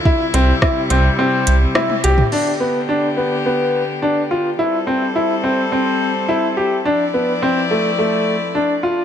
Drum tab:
CC |----------------|x---------------|----------------|----------------|
HH |--x---x---x---x-|----------------|----------------|----------------|
SD |----r-------r---|----------------|----------------|----------------|
T1 |------------oo--|----------------|----------------|----------------|
T2 |---------------o|----------------|----------------|----------------|
BD |o---o-----------|----------------|----------------|----------------|